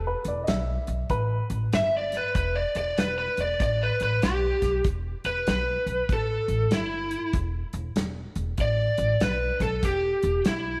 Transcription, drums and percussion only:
0.25 closed hi-hat
0.47 snare, closed hi-hat
0.87 closed hi-hat
1.10 kick, closed hi-hat
1.50 closed hi-hat
1.73 snare, closed hi-hat
2.12 snare, closed hi-hat
2.35 kick, closed hi-hat
2.75 closed hi-hat
2.98 snare, closed hi-hat
3.37 closed hi-hat
3.60 kick, closed hi-hat
4.00 closed hi-hat
4.22 snare, closed hi-hat
4.62 kick, snare, closed hi-hat
4.84 kick, closed hi-hat
5.24 closed hi-hat
5.47 snare, closed hi-hat
5.87 closed hi-hat
6.09 kick, closed hi-hat
6.48 closed hi-hat
6.71 snare, closed hi-hat
7.11 closed hi-hat
7.33 kick, closed hi-hat
7.73 closed hi-hat
7.96 snare, closed hi-hat
8.35 closed hi-hat
8.58 kick, closed hi-hat
8.98 closed hi-hat
9.20 snare, closed hi-hat
9.60 kick, snare, closed hi-hat
9.83 kick, closed hi-hat
10.23 closed hi-hat
10.45 snare, closed hi-hat

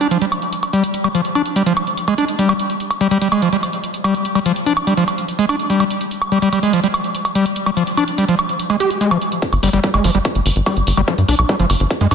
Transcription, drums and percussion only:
0.01 closed hi-hat
0.11 closed hi-hat
0.22 closed hi-hat
0.32 closed hi-hat, high woodblock
0.42 closed hi-hat
0.53 closed hi-hat
0.63 closed hi-hat, high woodblock
0.73 closed hi-hat
0.84 closed hi-hat
0.94 closed hi-hat
1.04 closed hi-hat, high woodblock
1.15 closed hi-hat
1.25 closed hi-hat
1.35 closed hi-hat, high woodblock
1.46 closed hi-hat
1.56 closed hi-hat
1.66 closed hi-hat
1.77 closed hi-hat, high woodblock
1.87 closed hi-hat
1.97 closed hi-hat
2.08 closed hi-hat, high woodblock
2.18 closed hi-hat
2.28 closed hi-hat
2.39 closed hi-hat
2.49 closed hi-hat, high woodblock
2.59 closed hi-hat
2.70 closed hi-hat
2.80 closed hi-hat
2.91 closed hi-hat, high woodblock
3.01 closed hi-hat
3.11 closed hi-hat
3.22 closed hi-hat
3.32 closed hi-hat, high woodblock
3.42 closed hi-hat
3.53 closed hi-hat
3.63 closed hi-hat, high woodblock
3.73 closed hi-hat
3.84 closed hi-hat
3.94 closed hi-hat
4.04 closed hi-hat, high woodblock
4.15 closed hi-hat
4.25 closed hi-hat
4.35 closed hi-hat, high woodblock
4.46 closed hi-hat
4.56 closed hi-hat
4.66 closed hi-hat
4.77 closed hi-hat, high woodblock
4.87 closed hi-hat
4.97 closed hi-hat
5.08 closed hi-hat, high woodblock
5.18 closed hi-hat
5.28 closed hi-hat
5.39 closed hi-hat
5.49 closed hi-hat, high woodblock
5.59 closed hi-hat
5.70 closed hi-hat
5.80 closed hi-hat, high woodblock
5.91 closed hi-hat
6.01 closed hi-hat
6.11 closed hi-hat
6.22 closed hi-hat, high woodblock
6.32 closed hi-hat
6.42 closed hi-hat
6.53 closed hi-hat, high woodblock
6.63 closed hi-hat
6.73 closed hi-hat
6.84 closed hi-hat
6.94 closed hi-hat, high woodblock
7.04 closed hi-hat
7.15 closed hi-hat
7.25 closed hi-hat, high woodblock
7.35 closed hi-hat
7.46 closed hi-hat
7.56 closed hi-hat
7.66 closed hi-hat, high woodblock
7.77 closed hi-hat
7.87 closed hi-hat
7.97 closed hi-hat, high woodblock
8.08 closed hi-hat
8.18 closed hi-hat
8.28 closed hi-hat
8.39 closed hi-hat, high woodblock
8.49 closed hi-hat
8.60 closed hi-hat
8.70 closed hi-hat, high woodblock
8.80 closed hi-hat
8.91 closed hi-hat
9.01 closed hi-hat
9.11 closed hi-hat, high woodblock
9.22 closed hi-hat
9.32 closed hi-hat
9.42 kick, closed hi-hat
9.53 closed hi-hat, high woodblock
9.63 open hi-hat
9.73 closed hi-hat
9.84 kick, closed hi-hat
9.94 closed hi-hat, high woodblock
10.04 open hi-hat
10.15 closed hi-hat
10.25 kick, closed hi-hat, high woodblock
10.35 closed hi-hat
10.46 open hi-hat
10.56 closed hi-hat
10.66 kick, open hi-hat, high woodblock
10.77 closed hi-hat
10.87 open hi-hat
10.97 closed hi-hat, high woodblock
11.08 kick, closed hi-hat
11.18 closed hi-hat
11.28 open hi-hat
11.39 closed hi-hat, high woodblock
11.49 kick, closed hi-hat
11.60 closed hi-hat
11.70 open hi-hat, high woodblock
11.80 closed hi-hat
11.90 kick, closed hi-hat
12.01 closed hi-hat
12.11 open hi-hat, high woodblock

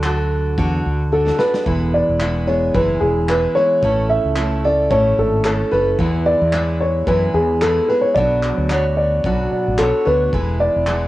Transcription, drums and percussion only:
0.03 clap
0.58 kick
1.27 snare
1.39 snare
1.54 snare
1.66 kick
2.20 clap
2.74 kick
3.29 clap
3.83 kick
4.36 clap
4.91 kick
5.45 clap
5.99 kick
6.53 clap
7.07 kick
7.62 clap
8.16 kick
8.43 clap
8.70 clap
9.24 kick
9.78 clap
10.33 kick
10.87 clap

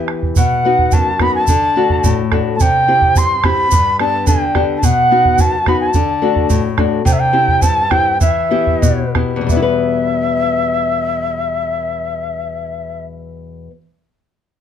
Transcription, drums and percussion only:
0.08 bombo rim
0.23 bombo low
0.36 bombo low, shaker
0.79 bombo low
0.91 bombo low, shaker
1.20 bombo rim, bombo low
1.47 bombo low, shaker
1.90 bombo low
2.04 bombo low, shaker
2.32 bombo rim, bombo low
2.60 bombo low, shaker
3.02 bombo low
3.16 bombo low, shaker
3.44 bombo rim, bombo low
3.71 bombo low, shaker
3.99 bombo rim
4.27 bombo low, shaker
4.55 bombo rim, bombo low
4.83 bombo low, shaker
5.25 bombo low
5.38 bombo low, shaker
5.66 bombo rim, bombo low
5.93 bombo low, shaker
6.36 bombo low
6.50 bombo low, shaker
6.78 bombo rim, bombo low
7.06 bombo low, shaker
7.48 bombo low
7.62 bombo low, shaker
7.91 bombo rim, bombo low
8.21 bombo low, shaker
8.67 bombo low
8.82 bombo low, shaker
9.15 bombo rim, bombo low
9.49 bombo low, shaker

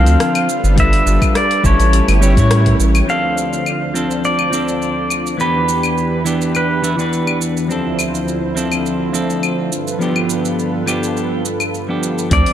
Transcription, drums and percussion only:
0.06 open hi-hat, shaker
0.20 cross-stick, open hi-hat, shaker
0.35 open hi-hat, claves
0.49 shaker
0.64 shaker
0.78 kick, open hi-hat, shaker
0.93 open hi-hat
1.07 shaker
1.22 kick, open hi-hat, claves, shaker
1.35 cross-stick, open hi-hat, shaker
1.51 open hi-hat
1.64 kick, shaker
1.80 open hi-hat, shaker
1.93 open hi-hat, shaker
2.08 open hi-hat, claves
2.23 shaker
2.37 kick, open hi-hat, shaker
2.51 cross-stick, open hi-hat, shaker
2.66 kick, open hi-hat
2.80 shaker
2.95 open hi-hat, claves, shaker
3.09 shaker
3.38 shaker
3.53 shaker
3.66 claves, shaker
3.96 shaker
4.11 shaker
4.24 shaker
4.39 claves
4.53 shaker
4.68 shaker
4.82 shaker
5.10 claves, shaker
5.27 shaker
5.40 shaker
5.69 shaker
5.83 claves, shaker
5.98 shaker
6.26 shaker
6.41 shaker
6.55 claves, shaker
6.84 shaker
6.99 shaker
7.13 shaker
7.27 claves
7.42 shaker
7.57 shaker
7.70 shaker
7.99 claves, shaker
8.15 shaker
8.28 shaker
8.57 shaker
8.72 claves, shaker
8.86 shaker
9.14 shaker
9.30 shaker
9.43 claves, shaker
9.72 shaker
9.88 shaker
10.01 shaker
10.16 claves
10.30 shaker
10.45 shaker
10.59 shaker
10.87 claves, shaker
11.03 shaker
11.17 shaker
11.45 shaker
11.60 claves, shaker
11.74 shaker
12.03 shaker
12.18 shaker
12.31 kick, open hi-hat, shaker
12.46 open hi-hat

